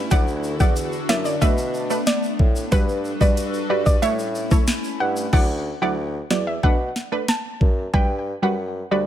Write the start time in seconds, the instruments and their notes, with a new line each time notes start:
Already playing: analog synth pad E4
0.11 bassoon D2, analog synth pad D3 D4 F#4 A4, synth stab F#3 E4 D5, synth pluck F#5, kick, closed hi-hat, shaker
0.28 shaker
0.44 shaker
0.60 bassoon E2, synth stab F#3 E4 D5, synth pluck F#5, kick, shaker
0.76 closed hi-hat, shaker
0.92 shaker
1.09 bassoon F#2, synth stab F#3 E4 D5, synth pluck E5, snare
1.25 synth pluck D5, shaker
1.41 bassoon B2, synth stab A3 D4 B4, analog synth pad A3 B3, synth pluck E5, kick, closed hi-hat, shaker
1.58 shaker
1.74 shaker
1.90 synth stab A3 D4 B4, shaker
2.07 synth pluck D5, snare, closed hi-hat, shaker
2.23 shaker
2.39 bassoon A2, kick
2.56 shaker
2.72 bassoon G2, synth stab G3 F#4 B4, analog synth pad G3 D4 F#4 A4 B4, synth pluck B4, kick, closed hi-hat, shaker
2.89 shaker
3.05 shaker
3.21 bassoon G2, synth stab G3 F#4 B4, synth pluck D5, kick, shaker
3.37 closed hi-hat, shaker
3.54 shaker
3.69 bassoon G2, synth stab G3 F#4 B4, synth pluck D5
3.86 synth pluck D5, kick, shaker
4.02 bassoon A2, synth stab A3 E4 C#5, analog synth pad A3 C#4 E4, synth pluck E5, closed hi-hat, shaker
4.19 shaker
4.35 shaker
4.51 synth stab A3 E4 C#5, kick, cross-stick, shaker
4.68 snare, closed hi-hat, shaker
4.84 shaker
5.00 bassoon G2, synth pluck F#5
5.17 shaker
5.33 bassoon D2, synth stab F#3 E4 D5, synth pluck F#5, kick, crash
5.82 bassoon D2, synth stab F#3 E4 D5, synth pluck F#5
6.31 bassoon E2, synth stab F#3 E4 D5, synth pluck D5, snare
6.47 synth pluck E5
6.63 bassoon B2, synth stab A3 D4 B4, synth pluck F#5, kick
6.96 snare
7.12 synth stab A3 D4 B4
7.28 synth pluck A5, snare
7.61 bassoon F#2, kick
7.93 bassoon G2, synth stab G3 F#4 B4, synth pluck G5, kick
8.42 bassoon F#2, synth stab G3 F#4 B4, synth pluck F#5
8.91 bassoon D2, synth stab G3 F#4 B4, synth pluck D5